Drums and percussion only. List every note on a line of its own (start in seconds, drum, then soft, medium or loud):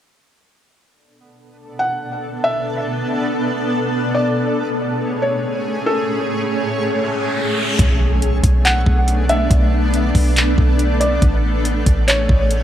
7.79 kick loud
7.79 closed hi-hat medium
8.22 closed hi-hat medium
8.43 kick medium
8.43 closed hi-hat medium
8.65 clap loud
8.65 closed hi-hat medium
8.86 kick medium
9.08 closed hi-hat medium
9.29 closed hi-hat medium
9.51 kick loud
9.51 closed hi-hat medium
9.94 closed hi-hat medium
10.15 kick medium
10.15 open hi-hat medium
10.37 clap loud
10.37 closed hi-hat medium
10.58 kick medium
10.79 closed hi-hat medium
11.01 closed hi-hat medium
11.22 kick loud
11.22 closed hi-hat medium
11.65 closed hi-hat medium
11.86 kick medium
11.86 closed hi-hat loud
12.08 clap loud
12.08 closed hi-hat medium
12.29 kick medium
12.51 closed hi-hat medium